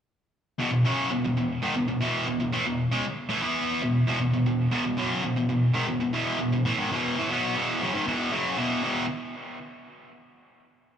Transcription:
0.59 E2 B2
0.71 E2 B2
0.84 F#2 C#3 F#3
1.11 E2 B2
1.25 E2 B2
1.37 E2 B2
1.62 G#2 D#3
1.76 E2 B2
1.88 E2 B2
2.01 E2 B2 E3
2.27 E2 B2
2.40 E2 B2
2.53 A2 E3
2.66 E2 B2
2.92 C#3 G#3
3.05 muted distorted electric guitar stroke
3.29 A2 E3
3.42 E3 B3 E4
3.82 E2 B2
4.07 E2 B2
4.21 E2 B2
4.34 E2 B2
4.46 E2 B2
4.72 E2 B2
4.85 E2 B2
4.97 F#2 C#3 F#3
5.24 E2 B2
5.37 E2 B2
5.50 E2 B2
5.74 G#2 D#3
5.88 E2 B2
6.01 E2 B2
6.13 E2 B2 E3
6.39 E2 B2
6.52 E2 B2
6.65 A2 E3
6.78 G#2 D#3
6.91 E2 B2 E3
7.17 A2 E3
7.30 B2 F#3 B3
7.55 E2 B2 E3
7.82 F#2 C#3
7.93 G#2 D#3
8.07 E2 B2 E3
8.32 F#2 C#3 F#3
8.57 E2 B2 E3
8.83 E2 B2 E3

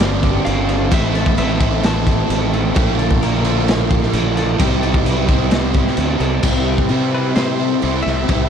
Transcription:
Already playing: G1 G2 D3 G3 C4 D4 G4 C5 D5 C6
0.00 G2 D3 G3 C4 D4, snare, crash
0.23 G4, kick, crash
0.45 G1 D3 G3 C4 D4 F5, crash
0.69 A4, crash
0.90 A1 A2 E3 A3 C4 E4 G4 A4 E5 B5, kick, crash
1.15 A4, crash
1.26 kick
1.37 A1 E3 A3 C4 E4 B4 E5, crash
1.59 A2 E3 A3 C4 E4 C5, kick, crash
1.83 A2 E3 A3 C4 E4 A5, snare, crash
2.07 G4, kick, crash
2.30 A1 E3 A3 C4 E4, crash
2.53 A4, crash
2.76 A#1 A#2 D3 F3 A#3 F4 G4 A#4 D5 F5 C6, kick, crash
2.99 A4, crash
3.11 kick
3.22 A#1 D3 F3 A#3 F4 A#4, crash
3.44 A#2 D3 F3 A#3 F4 C5, crash
3.68 A#2 D3 F3 A#3 F4, snare, crash
3.90 G4, kick, crash
4.03 snare
4.13 A#1 D3 F3 A#3 F4, crash
4.36 A4, crash
4.59 C2 C3 G3 C4 E4 G4 E5 C6, kick, crash
4.82 A4, crash
4.94 kick
5.04 C2 C3 G3 C4 E4 B4, crash
5.27 C3 G3 C4 E4 C5, kick, crash
5.51 C3 G3 C4 E4, snare, crash
5.74 G4, kick, crash
5.87 snare
5.97 D2 C3 G3 C4 E4, crash
6.20 C2 A4, crash
6.43 C2 C3 G3 C4 E4 G4 E5 B5, kick, crash
6.67 B4
6.78 kick
6.89 C3 G3 C4, crash
6.93 E4
7.14 B4 C5
7.35 C3 G3 C4 B4 C5, snare, crash
7.40 E4
7.60 G3 C4 E4 A4
7.82 C2 C3 G3 C4 E4, crash
8.03 C2 E5, snare
8.08 G4
8.28 C2 C3 G3 C4 E4 G4, kick, crash

